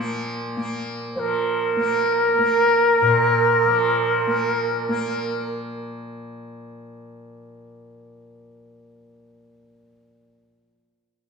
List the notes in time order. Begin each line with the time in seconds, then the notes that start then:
Already playing: A#2 F3 A#3
0.57 A#3
1.15 F3 A#4 C5
1.77 A#3
2.39 A#3
3.02 A#2
3.65 F3
4.27 A#3
4.89 A#3